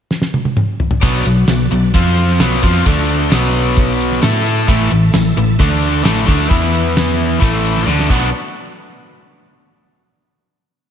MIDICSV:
0, 0, Header, 1, 5, 480
1, 0, Start_track
1, 0, Key_signature, 2, "minor"
1, 0, Tempo, 456621
1, 1075, Time_signature, 4, 2, 24, 8
1, 11463, End_track
2, 0, Start_track
2, 0, Title_t, "Tonewheel organ"
2, 0, Program_c, 0, 16
2, 1050, Note_on_c, 0, 74, 75
2, 1054, Note_on_c, 0, 62, 64
2, 1056, Note_on_c, 0, 71, 64
2, 1063, Note_on_c, 0, 66, 67
2, 2018, Note_off_c, 0, 74, 0
2, 2020, Note_off_c, 0, 62, 0
2, 2021, Note_off_c, 0, 71, 0
2, 2025, Note_off_c, 0, 66, 0
2, 2029, Note_on_c, 0, 65, 65
2, 2036, Note_on_c, 0, 60, 69
2, 2042, Note_on_c, 0, 72, 63
2, 2043, Note_on_c, 0, 77, 70
2, 2511, Note_off_c, 0, 65, 0
2, 2515, Note_off_c, 0, 60, 0
2, 2518, Note_off_c, 0, 72, 0
2, 2519, Note_off_c, 0, 77, 0
2, 2519, Note_on_c, 0, 66, 65
2, 2520, Note_on_c, 0, 71, 68
2, 2528, Note_on_c, 0, 74, 65
2, 2529, Note_on_c, 0, 62, 68
2, 2988, Note_off_c, 0, 74, 0
2, 2991, Note_on_c, 0, 69, 65
2, 2992, Note_off_c, 0, 62, 0
2, 2996, Note_on_c, 0, 57, 69
2, 2997, Note_off_c, 0, 66, 0
2, 2997, Note_off_c, 0, 71, 0
2, 3000, Note_on_c, 0, 74, 75
2, 3004, Note_on_c, 0, 62, 72
2, 3449, Note_off_c, 0, 74, 0
2, 3455, Note_off_c, 0, 62, 0
2, 3457, Note_on_c, 0, 66, 61
2, 3457, Note_on_c, 0, 71, 62
2, 3461, Note_on_c, 0, 74, 68
2, 3467, Note_on_c, 0, 62, 73
2, 3473, Note_off_c, 0, 69, 0
2, 3475, Note_off_c, 0, 57, 0
2, 4420, Note_off_c, 0, 66, 0
2, 4420, Note_off_c, 0, 71, 0
2, 4422, Note_off_c, 0, 74, 0
2, 4425, Note_off_c, 0, 62, 0
2, 4458, Note_on_c, 0, 57, 67
2, 4459, Note_on_c, 0, 69, 71
2, 4469, Note_on_c, 0, 64, 72
2, 4474, Note_on_c, 0, 76, 68
2, 4888, Note_off_c, 0, 76, 0
2, 4891, Note_off_c, 0, 57, 0
2, 4893, Note_off_c, 0, 64, 0
2, 4898, Note_off_c, 0, 69, 0
2, 4901, Note_on_c, 0, 76, 72
2, 4904, Note_on_c, 0, 57, 71
2, 4905, Note_on_c, 0, 64, 72
2, 4911, Note_on_c, 0, 69, 71
2, 5859, Note_off_c, 0, 76, 0
2, 5861, Note_off_c, 0, 57, 0
2, 5861, Note_off_c, 0, 64, 0
2, 5864, Note_off_c, 0, 69, 0
2, 5881, Note_on_c, 0, 57, 73
2, 5883, Note_on_c, 0, 62, 72
2, 5889, Note_on_c, 0, 69, 65
2, 5891, Note_on_c, 0, 74, 69
2, 6343, Note_off_c, 0, 57, 0
2, 6347, Note_off_c, 0, 69, 0
2, 6355, Note_off_c, 0, 62, 0
2, 6356, Note_on_c, 0, 57, 69
2, 6356, Note_on_c, 0, 76, 65
2, 6359, Note_off_c, 0, 74, 0
2, 6360, Note_on_c, 0, 69, 67
2, 6365, Note_on_c, 0, 64, 73
2, 6807, Note_off_c, 0, 76, 0
2, 6810, Note_off_c, 0, 64, 0
2, 6820, Note_on_c, 0, 76, 71
2, 6821, Note_on_c, 0, 59, 70
2, 6822, Note_on_c, 0, 71, 65
2, 6823, Note_on_c, 0, 64, 73
2, 6830, Note_off_c, 0, 57, 0
2, 6832, Note_off_c, 0, 69, 0
2, 7762, Note_off_c, 0, 76, 0
2, 7774, Note_on_c, 0, 76, 62
2, 7775, Note_off_c, 0, 59, 0
2, 7776, Note_off_c, 0, 64, 0
2, 7776, Note_off_c, 0, 71, 0
2, 7783, Note_on_c, 0, 57, 66
2, 7785, Note_on_c, 0, 69, 70
2, 7792, Note_on_c, 0, 64, 66
2, 8224, Note_off_c, 0, 69, 0
2, 8228, Note_on_c, 0, 74, 67
2, 8232, Note_off_c, 0, 57, 0
2, 8237, Note_on_c, 0, 69, 70
2, 8244, Note_on_c, 0, 62, 66
2, 8245, Note_on_c, 0, 57, 75
2, 8257, Note_off_c, 0, 76, 0
2, 8266, Note_off_c, 0, 64, 0
2, 8486, Note_off_c, 0, 74, 0
2, 8490, Note_off_c, 0, 62, 0
2, 8491, Note_off_c, 0, 69, 0
2, 8495, Note_off_c, 0, 57, 0
2, 8503, Note_on_c, 0, 62, 77
2, 8513, Note_on_c, 0, 59, 63
2, 8515, Note_on_c, 0, 66, 69
2, 8518, Note_on_c, 0, 71, 68
2, 8838, Note_off_c, 0, 62, 0
2, 8843, Note_off_c, 0, 59, 0
2, 8845, Note_off_c, 0, 66, 0
2, 8846, Note_off_c, 0, 71, 0
2, 11463, End_track
3, 0, Start_track
3, 0, Title_t, "Overdriven electric guitar"
3, 0, Program_c, 1, 29
3, 1081, Note_on_c, 1, 47, 87
3, 1093, Note_on_c, 1, 54, 96
3, 1097, Note_on_c, 1, 59, 102
3, 1309, Note_off_c, 1, 54, 0
3, 1313, Note_off_c, 1, 47, 0
3, 1321, Note_off_c, 1, 59, 0
3, 1321, Note_on_c, 1, 54, 73
3, 1324, Note_on_c, 1, 47, 67
3, 1512, Note_off_c, 1, 54, 0
3, 1514, Note_off_c, 1, 47, 0
3, 1572, Note_on_c, 1, 47, 61
3, 1576, Note_on_c, 1, 54, 62
3, 1758, Note_off_c, 1, 47, 0
3, 1760, Note_off_c, 1, 54, 0
3, 1808, Note_on_c, 1, 47, 59
3, 1818, Note_on_c, 1, 54, 57
3, 1997, Note_off_c, 1, 47, 0
3, 2002, Note_off_c, 1, 54, 0
3, 2040, Note_on_c, 1, 53, 98
3, 2049, Note_on_c, 1, 60, 95
3, 2058, Note_on_c, 1, 65, 103
3, 2515, Note_off_c, 1, 53, 0
3, 2519, Note_off_c, 1, 60, 0
3, 2524, Note_off_c, 1, 65, 0
3, 2526, Note_on_c, 1, 47, 90
3, 2536, Note_on_c, 1, 54, 87
3, 2538, Note_on_c, 1, 59, 95
3, 2754, Note_off_c, 1, 47, 0
3, 2758, Note_on_c, 1, 53, 88
3, 2763, Note_off_c, 1, 54, 0
3, 2764, Note_off_c, 1, 59, 0
3, 2767, Note_on_c, 1, 60, 88
3, 2776, Note_on_c, 1, 65, 104
3, 2994, Note_off_c, 1, 53, 0
3, 2998, Note_off_c, 1, 60, 0
3, 3003, Note_off_c, 1, 65, 0
3, 3007, Note_on_c, 1, 50, 95
3, 3016, Note_on_c, 1, 57, 103
3, 3022, Note_on_c, 1, 62, 96
3, 3478, Note_off_c, 1, 50, 0
3, 3483, Note_off_c, 1, 57, 0
3, 3486, Note_off_c, 1, 62, 0
3, 3490, Note_on_c, 1, 47, 93
3, 3498, Note_on_c, 1, 54, 89
3, 3504, Note_on_c, 1, 59, 96
3, 4433, Note_off_c, 1, 54, 0
3, 4437, Note_on_c, 1, 57, 78
3, 4439, Note_off_c, 1, 47, 0
3, 4446, Note_off_c, 1, 59, 0
3, 4452, Note_on_c, 1, 64, 83
3, 4457, Note_on_c, 1, 69, 93
3, 4912, Note_off_c, 1, 57, 0
3, 4920, Note_off_c, 1, 64, 0
3, 4922, Note_off_c, 1, 69, 0
3, 4928, Note_on_c, 1, 45, 95
3, 4935, Note_on_c, 1, 52, 107
3, 4947, Note_on_c, 1, 57, 102
3, 5154, Note_off_c, 1, 45, 0
3, 5161, Note_off_c, 1, 52, 0
3, 5166, Note_on_c, 1, 45, 56
3, 5167, Note_off_c, 1, 57, 0
3, 5173, Note_on_c, 1, 52, 78
3, 5355, Note_off_c, 1, 45, 0
3, 5359, Note_off_c, 1, 52, 0
3, 5406, Note_on_c, 1, 45, 68
3, 5410, Note_on_c, 1, 52, 76
3, 5595, Note_off_c, 1, 45, 0
3, 5597, Note_off_c, 1, 52, 0
3, 5644, Note_on_c, 1, 52, 65
3, 5646, Note_on_c, 1, 45, 53
3, 5833, Note_off_c, 1, 52, 0
3, 5835, Note_off_c, 1, 45, 0
3, 5876, Note_on_c, 1, 50, 95
3, 5883, Note_on_c, 1, 57, 102
3, 5885, Note_on_c, 1, 62, 115
3, 6349, Note_off_c, 1, 50, 0
3, 6352, Note_off_c, 1, 57, 0
3, 6353, Note_off_c, 1, 62, 0
3, 6354, Note_on_c, 1, 45, 90
3, 6361, Note_on_c, 1, 52, 98
3, 6363, Note_on_c, 1, 57, 93
3, 6587, Note_off_c, 1, 45, 0
3, 6591, Note_off_c, 1, 52, 0
3, 6592, Note_off_c, 1, 57, 0
3, 6609, Note_on_c, 1, 50, 87
3, 6618, Note_on_c, 1, 57, 86
3, 6624, Note_on_c, 1, 62, 97
3, 6825, Note_off_c, 1, 50, 0
3, 6829, Note_on_c, 1, 52, 106
3, 6832, Note_off_c, 1, 57, 0
3, 6836, Note_on_c, 1, 59, 95
3, 6842, Note_off_c, 1, 62, 0
3, 6848, Note_on_c, 1, 64, 109
3, 7782, Note_off_c, 1, 52, 0
3, 7785, Note_off_c, 1, 59, 0
3, 7790, Note_on_c, 1, 45, 88
3, 7791, Note_off_c, 1, 64, 0
3, 7798, Note_on_c, 1, 52, 108
3, 7811, Note_on_c, 1, 57, 113
3, 8255, Note_off_c, 1, 45, 0
3, 8257, Note_off_c, 1, 57, 0
3, 8259, Note_on_c, 1, 50, 72
3, 8265, Note_off_c, 1, 52, 0
3, 8270, Note_on_c, 1, 57, 94
3, 8276, Note_on_c, 1, 62, 105
3, 8504, Note_off_c, 1, 50, 0
3, 8509, Note_off_c, 1, 57, 0
3, 8510, Note_on_c, 1, 47, 85
3, 8513, Note_off_c, 1, 62, 0
3, 8516, Note_on_c, 1, 54, 92
3, 8522, Note_on_c, 1, 59, 105
3, 8525, Note_on_c, 1, 62, 103
3, 8529, Note_on_c, 1, 66, 112
3, 8702, Note_off_c, 1, 47, 0
3, 8704, Note_off_c, 1, 54, 0
3, 8708, Note_off_c, 1, 59, 0
3, 8709, Note_off_c, 1, 62, 0
3, 8711, Note_off_c, 1, 66, 0
3, 11463, End_track
4, 0, Start_track
4, 0, Title_t, "Fingered electric bass"
4, 0, Program_c, 2, 33
4, 1085, Note_on_c, 2, 35, 94
4, 1305, Note_off_c, 2, 35, 0
4, 1320, Note_on_c, 2, 35, 85
4, 1543, Note_off_c, 2, 35, 0
4, 1553, Note_on_c, 2, 35, 78
4, 1780, Note_off_c, 2, 35, 0
4, 1799, Note_on_c, 2, 35, 87
4, 2023, Note_off_c, 2, 35, 0
4, 2044, Note_on_c, 2, 41, 87
4, 2490, Note_off_c, 2, 41, 0
4, 2513, Note_on_c, 2, 35, 87
4, 2741, Note_off_c, 2, 35, 0
4, 2768, Note_on_c, 2, 41, 95
4, 2989, Note_off_c, 2, 41, 0
4, 3010, Note_on_c, 2, 38, 88
4, 3454, Note_off_c, 2, 38, 0
4, 3487, Note_on_c, 2, 35, 93
4, 4403, Note_off_c, 2, 35, 0
4, 4450, Note_on_c, 2, 45, 79
4, 4893, Note_off_c, 2, 45, 0
4, 4923, Note_on_c, 2, 33, 78
4, 5145, Note_off_c, 2, 33, 0
4, 5169, Note_on_c, 2, 33, 75
4, 5388, Note_off_c, 2, 33, 0
4, 5406, Note_on_c, 2, 33, 82
4, 5626, Note_off_c, 2, 33, 0
4, 5635, Note_on_c, 2, 33, 84
4, 5860, Note_off_c, 2, 33, 0
4, 5880, Note_on_c, 2, 38, 95
4, 6325, Note_off_c, 2, 38, 0
4, 6363, Note_on_c, 2, 33, 82
4, 6583, Note_off_c, 2, 33, 0
4, 6606, Note_on_c, 2, 38, 91
4, 6824, Note_off_c, 2, 38, 0
4, 6849, Note_on_c, 2, 40, 92
4, 7757, Note_off_c, 2, 40, 0
4, 7803, Note_on_c, 2, 33, 86
4, 8243, Note_off_c, 2, 33, 0
4, 8266, Note_on_c, 2, 38, 81
4, 8491, Note_off_c, 2, 38, 0
4, 8514, Note_on_c, 2, 35, 81
4, 8735, Note_off_c, 2, 35, 0
4, 11463, End_track
5, 0, Start_track
5, 0, Title_t, "Drums"
5, 113, Note_on_c, 9, 38, 67
5, 218, Note_off_c, 9, 38, 0
5, 228, Note_on_c, 9, 38, 75
5, 333, Note_off_c, 9, 38, 0
5, 357, Note_on_c, 9, 48, 86
5, 462, Note_off_c, 9, 48, 0
5, 475, Note_on_c, 9, 48, 82
5, 581, Note_off_c, 9, 48, 0
5, 596, Note_on_c, 9, 47, 94
5, 701, Note_off_c, 9, 47, 0
5, 840, Note_on_c, 9, 43, 94
5, 945, Note_off_c, 9, 43, 0
5, 954, Note_on_c, 9, 43, 114
5, 1059, Note_off_c, 9, 43, 0
5, 1078, Note_on_c, 9, 42, 99
5, 1081, Note_on_c, 9, 36, 109
5, 1183, Note_off_c, 9, 42, 0
5, 1187, Note_off_c, 9, 36, 0
5, 1191, Note_on_c, 9, 54, 32
5, 1296, Note_off_c, 9, 54, 0
5, 1296, Note_on_c, 9, 54, 75
5, 1321, Note_on_c, 9, 42, 73
5, 1401, Note_off_c, 9, 54, 0
5, 1427, Note_off_c, 9, 42, 0
5, 1552, Note_on_c, 9, 54, 109
5, 1554, Note_off_c, 9, 54, 0
5, 1554, Note_on_c, 9, 38, 118
5, 1554, Note_on_c, 9, 42, 96
5, 1554, Note_on_c, 9, 54, 118
5, 1659, Note_off_c, 9, 38, 0
5, 1659, Note_off_c, 9, 42, 0
5, 1659, Note_off_c, 9, 54, 0
5, 1674, Note_on_c, 9, 54, 72
5, 1779, Note_off_c, 9, 54, 0
5, 1805, Note_on_c, 9, 42, 66
5, 1911, Note_off_c, 9, 42, 0
5, 1928, Note_on_c, 9, 54, 28
5, 2033, Note_off_c, 9, 54, 0
5, 2039, Note_on_c, 9, 42, 94
5, 2048, Note_on_c, 9, 36, 105
5, 2144, Note_off_c, 9, 42, 0
5, 2153, Note_off_c, 9, 36, 0
5, 2281, Note_on_c, 9, 54, 67
5, 2286, Note_on_c, 9, 42, 70
5, 2386, Note_off_c, 9, 54, 0
5, 2391, Note_off_c, 9, 42, 0
5, 2524, Note_on_c, 9, 38, 127
5, 2524, Note_on_c, 9, 42, 102
5, 2524, Note_on_c, 9, 54, 111
5, 2525, Note_off_c, 9, 54, 0
5, 2525, Note_on_c, 9, 54, 90
5, 2630, Note_off_c, 9, 38, 0
5, 2630, Note_off_c, 9, 42, 0
5, 2630, Note_off_c, 9, 54, 0
5, 2754, Note_on_c, 9, 54, 72
5, 2766, Note_on_c, 9, 42, 74
5, 2770, Note_on_c, 9, 36, 102
5, 2859, Note_off_c, 9, 54, 0
5, 2871, Note_off_c, 9, 42, 0
5, 2875, Note_off_c, 9, 36, 0
5, 3007, Note_on_c, 9, 42, 99
5, 3011, Note_on_c, 9, 36, 108
5, 3112, Note_off_c, 9, 42, 0
5, 3116, Note_off_c, 9, 36, 0
5, 3118, Note_on_c, 9, 54, 31
5, 3223, Note_off_c, 9, 54, 0
5, 3239, Note_on_c, 9, 54, 63
5, 3248, Note_on_c, 9, 42, 72
5, 3344, Note_off_c, 9, 54, 0
5, 3353, Note_off_c, 9, 42, 0
5, 3466, Note_on_c, 9, 54, 93
5, 3488, Note_off_c, 9, 54, 0
5, 3488, Note_on_c, 9, 38, 127
5, 3488, Note_on_c, 9, 42, 94
5, 3488, Note_on_c, 9, 54, 122
5, 3587, Note_off_c, 9, 54, 0
5, 3587, Note_on_c, 9, 54, 72
5, 3594, Note_off_c, 9, 38, 0
5, 3594, Note_off_c, 9, 42, 0
5, 3692, Note_off_c, 9, 54, 0
5, 3732, Note_on_c, 9, 42, 58
5, 3837, Note_off_c, 9, 42, 0
5, 3838, Note_on_c, 9, 54, 29
5, 3943, Note_off_c, 9, 54, 0
5, 3960, Note_on_c, 9, 42, 84
5, 3968, Note_on_c, 9, 36, 100
5, 4065, Note_off_c, 9, 42, 0
5, 4074, Note_off_c, 9, 36, 0
5, 4186, Note_on_c, 9, 54, 77
5, 4213, Note_on_c, 9, 42, 63
5, 4292, Note_off_c, 9, 54, 0
5, 4319, Note_off_c, 9, 42, 0
5, 4330, Note_on_c, 9, 38, 31
5, 4430, Note_on_c, 9, 54, 103
5, 4435, Note_off_c, 9, 38, 0
5, 4445, Note_off_c, 9, 54, 0
5, 4445, Note_on_c, 9, 38, 117
5, 4445, Note_on_c, 9, 42, 93
5, 4445, Note_on_c, 9, 54, 114
5, 4550, Note_off_c, 9, 38, 0
5, 4550, Note_off_c, 9, 42, 0
5, 4550, Note_off_c, 9, 54, 0
5, 4670, Note_on_c, 9, 54, 73
5, 4692, Note_on_c, 9, 42, 62
5, 4775, Note_off_c, 9, 54, 0
5, 4797, Note_off_c, 9, 42, 0
5, 4923, Note_on_c, 9, 42, 89
5, 4926, Note_on_c, 9, 36, 115
5, 5028, Note_off_c, 9, 42, 0
5, 5031, Note_off_c, 9, 36, 0
5, 5044, Note_on_c, 9, 54, 29
5, 5147, Note_off_c, 9, 54, 0
5, 5147, Note_on_c, 9, 54, 65
5, 5157, Note_on_c, 9, 42, 65
5, 5252, Note_off_c, 9, 54, 0
5, 5262, Note_off_c, 9, 42, 0
5, 5389, Note_on_c, 9, 54, 85
5, 5401, Note_off_c, 9, 54, 0
5, 5401, Note_on_c, 9, 38, 114
5, 5401, Note_on_c, 9, 42, 105
5, 5401, Note_on_c, 9, 54, 116
5, 5506, Note_off_c, 9, 38, 0
5, 5506, Note_off_c, 9, 42, 0
5, 5506, Note_off_c, 9, 54, 0
5, 5516, Note_on_c, 9, 54, 67
5, 5621, Note_off_c, 9, 54, 0
5, 5648, Note_on_c, 9, 42, 57
5, 5753, Note_off_c, 9, 42, 0
5, 5765, Note_on_c, 9, 54, 23
5, 5870, Note_off_c, 9, 54, 0
5, 5882, Note_on_c, 9, 42, 92
5, 5884, Note_on_c, 9, 36, 112
5, 5987, Note_off_c, 9, 42, 0
5, 5990, Note_off_c, 9, 36, 0
5, 6121, Note_on_c, 9, 54, 61
5, 6122, Note_on_c, 9, 42, 72
5, 6226, Note_off_c, 9, 54, 0
5, 6227, Note_off_c, 9, 42, 0
5, 6355, Note_on_c, 9, 54, 72
5, 6365, Note_off_c, 9, 54, 0
5, 6365, Note_on_c, 9, 38, 125
5, 6365, Note_on_c, 9, 42, 113
5, 6365, Note_on_c, 9, 54, 117
5, 6470, Note_off_c, 9, 38, 0
5, 6470, Note_off_c, 9, 42, 0
5, 6470, Note_off_c, 9, 54, 0
5, 6602, Note_on_c, 9, 54, 50
5, 6606, Note_on_c, 9, 36, 104
5, 6612, Note_on_c, 9, 42, 79
5, 6707, Note_off_c, 9, 54, 0
5, 6711, Note_off_c, 9, 36, 0
5, 6717, Note_off_c, 9, 42, 0
5, 6842, Note_on_c, 9, 42, 91
5, 6844, Note_on_c, 9, 36, 112
5, 6947, Note_off_c, 9, 42, 0
5, 6949, Note_off_c, 9, 36, 0
5, 7078, Note_on_c, 9, 54, 45
5, 7087, Note_on_c, 9, 42, 67
5, 7183, Note_off_c, 9, 54, 0
5, 7192, Note_off_c, 9, 42, 0
5, 7205, Note_on_c, 9, 54, 26
5, 7310, Note_off_c, 9, 54, 0
5, 7319, Note_on_c, 9, 54, 77
5, 7327, Note_off_c, 9, 54, 0
5, 7327, Note_on_c, 9, 38, 120
5, 7327, Note_on_c, 9, 42, 93
5, 7327, Note_on_c, 9, 54, 116
5, 7432, Note_off_c, 9, 38, 0
5, 7432, Note_off_c, 9, 42, 0
5, 7432, Note_off_c, 9, 54, 0
5, 7436, Note_on_c, 9, 54, 62
5, 7541, Note_off_c, 9, 54, 0
5, 7566, Note_on_c, 9, 42, 54
5, 7666, Note_on_c, 9, 54, 24
5, 7671, Note_off_c, 9, 42, 0
5, 7771, Note_off_c, 9, 54, 0
5, 7800, Note_on_c, 9, 36, 111
5, 7801, Note_on_c, 9, 42, 77
5, 7905, Note_off_c, 9, 36, 0
5, 7906, Note_off_c, 9, 42, 0
5, 7910, Note_on_c, 9, 54, 26
5, 8016, Note_off_c, 9, 54, 0
5, 8041, Note_on_c, 9, 54, 63
5, 8047, Note_on_c, 9, 42, 70
5, 8146, Note_off_c, 9, 54, 0
5, 8152, Note_off_c, 9, 42, 0
5, 8156, Note_on_c, 9, 54, 24
5, 8170, Note_on_c, 9, 38, 31
5, 8259, Note_off_c, 9, 54, 0
5, 8259, Note_on_c, 9, 54, 83
5, 8275, Note_off_c, 9, 38, 0
5, 8283, Note_on_c, 9, 38, 61
5, 8364, Note_off_c, 9, 54, 0
5, 8383, Note_on_c, 9, 54, 27
5, 8388, Note_off_c, 9, 38, 0
5, 8404, Note_on_c, 9, 38, 55
5, 8489, Note_off_c, 9, 54, 0
5, 8505, Note_on_c, 9, 54, 70
5, 8509, Note_off_c, 9, 38, 0
5, 8517, Note_on_c, 9, 36, 100
5, 8522, Note_on_c, 9, 49, 80
5, 8610, Note_off_c, 9, 54, 0
5, 8622, Note_off_c, 9, 36, 0
5, 8627, Note_off_c, 9, 49, 0
5, 11463, End_track
0, 0, End_of_file